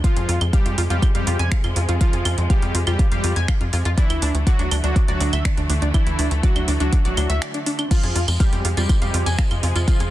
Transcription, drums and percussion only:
0.04 kick loud
0.04 closed hi-hat medium
0.17 closed hi-hat soft
0.29 open hi-hat loud
0.41 closed hi-hat soft
0.41 claves medium
0.53 kick loud
0.53 closed hi-hat medium
0.66 closed hi-hat soft
0.78 open hi-hat loud
0.90 closed hi-hat soft
1.02 kick loud
1.02 closed hi-hat medium
1.02 claves medium
1.15 closed hi-hat soft
1.27 open hi-hat loud
1.39 closed hi-hat soft
1.52 finger snap loud
1.52 kick loud
1.52 closed hi-hat medium
1.64 closed hi-hat soft
1.64 claves medium
1.76 open hi-hat loud
1.89 closed hi-hat soft
2.01 kick loud
2.01 closed hi-hat medium
2.13 closed hi-hat soft
2.25 open hi-hat loud
2.25 claves medium
2.38 closed hi-hat soft
2.50 kick loud
2.50 closed hi-hat medium
2.62 closed hi-hat soft
2.75 open hi-hat loud
2.87 closed hi-hat soft
2.87 claves medium
2.99 kick loud
2.99 closed hi-hat medium
3.12 closed hi-hat soft
3.24 open hi-hat loud
3.36 closed hi-hat soft
3.48 finger snap loud
3.48 kick loud
3.48 closed hi-hat medium
3.48 claves medium
3.61 closed hi-hat soft
3.73 open hi-hat loud
3.85 closed hi-hat soft
3.98 kick loud
3.98 closed hi-hat medium
4.10 closed hi-hat soft
4.10 claves medium
4.22 open hi-hat loud
4.35 closed hi-hat soft
4.47 kick loud
4.47 closed hi-hat medium
4.59 closed hi-hat soft
4.71 open hi-hat loud
4.71 claves medium
4.84 closed hi-hat soft
4.96 kick loud
4.96 closed hi-hat medium
5.08 closed hi-hat soft
5.21 open hi-hat loud
5.33 closed hi-hat soft
5.33 claves medium
5.45 finger snap loud
5.45 kick loud
5.45 closed hi-hat medium
5.57 closed hi-hat soft
5.70 open hi-hat loud
5.82 closed hi-hat soft
5.94 kick loud
5.94 closed hi-hat medium
5.94 claves medium
6.07 closed hi-hat soft
6.19 open hi-hat loud
6.31 closed hi-hat medium
6.43 kick loud
6.43 closed hi-hat medium
6.56 closed hi-hat soft
6.56 claves medium
6.68 open hi-hat loud
6.80 closed hi-hat soft
6.93 kick loud
6.93 closed hi-hat medium
7.05 closed hi-hat soft
7.17 open hi-hat loud
7.17 claves medium
7.30 closed hi-hat soft
7.42 finger snap loud
7.42 closed hi-hat medium
7.54 closed hi-hat soft
7.66 open hi-hat loud
7.79 closed hi-hat soft
7.79 claves medium
7.91 kick loud
7.91 closed hi-hat medium
7.91 tambourine medium
7.91 crash medium
8.03 closed hi-hat soft
8.03 tambourine soft
8.16 open hi-hat loud
8.28 closed hi-hat medium
8.28 tambourine medium
8.28 claves medium
8.40 kick loud
8.40 closed hi-hat medium
8.40 tambourine medium
8.52 closed hi-hat soft
8.52 tambourine soft
8.65 open hi-hat loud
8.77 closed hi-hat soft
8.77 tambourine medium
8.89 kick loud
8.89 closed hi-hat medium
8.89 tambourine medium
8.89 claves soft
9.02 closed hi-hat soft
9.02 tambourine soft
9.14 open hi-hat loud
9.26 closed hi-hat soft
9.26 tambourine medium
9.38 finger snap loud
9.38 kick loud
9.38 closed hi-hat medium
9.38 tambourine medium
9.51 closed hi-hat soft
9.51 tambourine soft
9.51 claves medium
9.63 open hi-hat loud
9.76 closed hi-hat soft
9.76 tambourine medium
9.88 kick loud
9.88 closed hi-hat medium
9.88 tambourine medium
10.00 closed hi-hat soft
10.00 tambourine soft

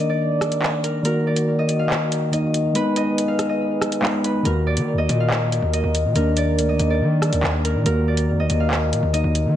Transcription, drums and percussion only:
0.41 cross-stick loud
0.41 closed hi-hat medium
0.52 closed hi-hat medium
0.62 clap loud
0.84 closed hi-hat medium
1.05 closed hi-hat medium
1.36 closed hi-hat medium
1.69 closed hi-hat medium
1.90 clap loud
2.12 closed hi-hat medium
2.33 closed hi-hat medium
2.54 closed hi-hat medium
2.75 closed hi-hat medium
2.96 closed hi-hat medium
3.18 closed hi-hat medium
3.39 cross-stick medium
3.39 closed hi-hat medium
3.81 cross-stick medium
3.81 closed hi-hat medium
3.92 closed hi-hat medium
4.03 clap loud
4.24 closed hi-hat medium
4.45 closed hi-hat medium
4.77 closed hi-hat medium
5.09 closed hi-hat medium
5.30 clap loud
5.52 closed hi-hat medium
5.74 closed hi-hat medium
5.95 closed hi-hat medium
6.16 closed hi-hat medium
6.37 closed hi-hat medium
6.59 closed hi-hat medium
6.79 closed hi-hat medium
7.22 cross-stick medium
7.22 closed hi-hat medium
7.33 closed hi-hat medium
7.43 clap loud
7.65 closed hi-hat medium
7.86 closed hi-hat medium
8.17 closed hi-hat medium
8.50 closed hi-hat medium
8.71 clap loud
8.93 closed hi-hat medium
9.14 closed hi-hat medium
9.35 closed hi-hat medium

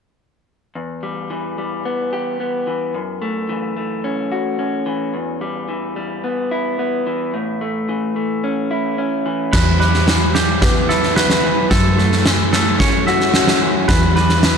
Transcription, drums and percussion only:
9.53 kick medium
9.53 snare medium
9.53 crash medium
9.81 snare soft
9.94 snare soft
10.08 snare medium
10.35 snare medium
10.62 kick medium
10.62 snare medium
10.90 snare soft
11.03 snare soft
11.16 snare medium
11.30 snare medium
11.71 kick medium
11.71 snare medium
11.99 snare soft
12.12 snare soft
12.26 snare medium
12.53 snare medium
12.80 kick medium
12.80 snare medium
13.07 snare soft
13.20 snare soft
13.34 snare medium
13.47 snare medium
13.89 kick medium
13.89 snare medium
14.16 snare soft
14.29 snare soft
14.43 snare medium

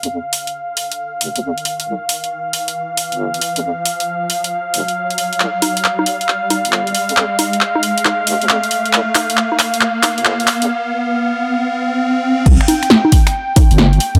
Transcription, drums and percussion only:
0.03 closed hi-hat medium
0.33 open hi-hat loud
0.47 closed hi-hat medium
0.77 open hi-hat medium
0.92 closed hi-hat medium
1.21 open hi-hat medium
1.36 closed hi-hat medium
1.58 closed hi-hat soft
1.65 open hi-hat medium
1.80 closed hi-hat medium
2.09 open hi-hat loud
2.24 closed hi-hat medium
2.53 open hi-hat medium
2.68 closed hi-hat medium
2.97 open hi-hat medium
3.12 closed hi-hat medium
3.34 closed hi-hat soft
3.41 open hi-hat medium
3.56 closed hi-hat medium
3.85 open hi-hat loud
4.00 closed hi-hat medium
4.30 open hi-hat medium
4.44 closed hi-hat medium
4.74 open hi-hat medium
4.88 closed hi-hat medium
5.10 closed hi-hat soft
5.18 open hi-hat medium
5.33 closed hi-hat medium
5.40 clap soft
5.62 open hi-hat loud
5.62 high conga medium
5.77 closed hi-hat medium
5.84 clap soft
5.99 high conga medium
6.06 open hi-hat medium
6.21 closed hi-hat medium
6.28 clap soft
6.50 open hi-hat medium
6.50 high conga medium
6.65 closed hi-hat medium
6.72 clap medium
6.87 closed hi-hat soft
6.95 open hi-hat medium
7.09 closed hi-hat medium
7.17 clap medium
7.39 open hi-hat loud
7.39 high conga medium
7.53 closed hi-hat medium
7.61 clap medium
7.75 high conga medium
7.83 open hi-hat medium
7.98 closed hi-hat medium
8.05 clap medium
8.05 high conga medium
8.27 open hi-hat loud
8.42 closed hi-hat medium
8.49 clap medium
8.63 closed hi-hat medium
8.71 open hi-hat medium
8.86 closed hi-hat medium
8.93 clap medium
9.15 clap medium
9.15 open hi-hat loud
9.15 high conga medium
9.30 closed hi-hat medium
9.37 clap medium
9.52 high conga medium
9.59 clap medium
9.59 open hi-hat medium
9.74 closed hi-hat medium
9.81 clap medium
10.03 clap medium
10.03 open hi-hat loud
10.03 high conga medium
10.18 closed hi-hat medium
10.25 clap medium
10.40 closed hi-hat medium
10.47 clap medium
10.47 open hi-hat medium
10.62 closed hi-hat medium
12.46 kick loud
12.46 crash loud
12.61 finger snap medium
12.68 open hi-hat loud
12.68 high conga medium
12.83 finger snap soft
12.83 closed hi-hat medium
12.90 snare loud
13.05 high conga medium
13.12 kick medium
13.12 open hi-hat loud
13.27 finger snap medium
13.27 closed hi-hat medium
13.56 kick loud
13.56 open hi-hat loud
13.56 high conga medium
13.71 closed hi-hat medium
13.78 snare loud
13.93 closed hi-hat soft
14.00 open hi-hat loud
14.15 closed hi-hat medium

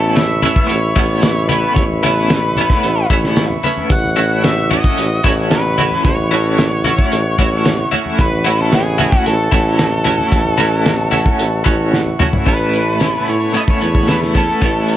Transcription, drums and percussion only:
0.16 snare loud
0.16 closed hi-hat medium
0.42 closed hi-hat medium
0.42 high conga medium
0.42 low conga medium
0.56 kick medium
0.69 closed hi-hat medium
0.96 kick medium
0.96 closed hi-hat medium
0.96 high conga medium
1.22 snare loud
1.22 closed hi-hat medium
1.49 closed hi-hat medium
1.49 low conga medium
1.76 kick loud
1.76 closed hi-hat medium
1.76 low conga medium
1.89 high conga medium
2.03 closed hi-hat medium
2.03 low conga medium
2.30 snare loud
2.30 closed hi-hat medium
2.56 closed hi-hat medium
2.56 low conga medium
2.70 kick medium
2.70 snare soft
2.83 closed hi-hat medium
3.10 kick medium
3.10 closed hi-hat medium
3.10 high conga medium
3.24 snare soft
3.36 snare loud
3.36 closed hi-hat medium
3.50 high conga medium
3.63 closed hi-hat medium
3.63 low conga medium
3.78 high conga medium
3.90 kick loud
3.90 closed hi-hat medium
3.90 low conga medium
4.05 high conga medium
4.17 closed hi-hat medium
4.44 snare loud
4.44 closed hi-hat medium
4.71 closed hi-hat medium
4.71 high conga medium
4.71 low conga medium
4.84 kick medium
4.98 closed hi-hat medium
5.24 kick medium
5.24 closed hi-hat medium
5.24 high conga medium
5.51 snare loud
5.51 closed hi-hat medium
5.78 closed hi-hat medium
5.78 low conga medium
5.91 high conga medium
6.05 kick loud
6.05 closed hi-hat medium
6.05 low conga medium
6.17 high conga medium
6.31 closed hi-hat medium
6.58 snare loud
6.58 closed hi-hat medium
6.84 closed hi-hat medium
6.84 high conga medium
6.84 low conga medium
6.99 kick medium
7.12 closed hi-hat medium
7.38 kick medium
7.38 closed hi-hat medium
7.38 high conga medium
7.65 snare loud
7.65 closed hi-hat medium
7.92 closed hi-hat medium
7.92 low conga medium
8.06 high conga medium
8.19 kick loud
8.19 closed hi-hat medium
8.19 low conga medium
8.33 high conga medium
8.46 closed hi-hat medium
8.72 snare loud
8.72 closed hi-hat medium
8.99 closed hi-hat medium
8.99 high conga medium
8.99 low conga medium
9.12 kick medium
9.26 closed hi-hat medium
9.52 kick medium
9.52 closed hi-hat medium
9.52 high conga medium
9.79 snare loud
9.79 closed hi-hat medium
10.05 closed hi-hat medium
10.05 low conga medium
10.19 high conga medium
10.32 kick loud
10.32 closed hi-hat medium
10.32 low conga medium
10.45 high conga medium
10.58 closed hi-hat medium
10.58 low conga medium
10.86 snare loud
10.86 closed hi-hat medium
11.12 closed hi-hat medium
11.12 high conga medium
11.12 low conga medium
11.26 kick medium
11.39 closed hi-hat medium
11.66 kick medium
11.66 closed hi-hat medium
11.66 high conga medium
11.93 snare medium
12.06 high conga medium
12.19 mid tom medium
12.19 low conga medium
12.33 floor tom medium
12.33 high conga medium
12.47 kick loud
12.47 closed hi-hat medium
12.74 closed hi-hat medium
13.00 snare loud
13.00 closed hi-hat medium
13.28 closed hi-hat medium
13.54 closed hi-hat medium
13.68 kick medium
13.81 closed hi-hat medium
13.95 kick medium
14.08 snare loud
14.08 closed hi-hat medium
14.22 snare soft
14.35 kick medium
14.35 closed hi-hat medium
14.61 kick loud
14.61 closed hi-hat medium
14.88 closed hi-hat medium

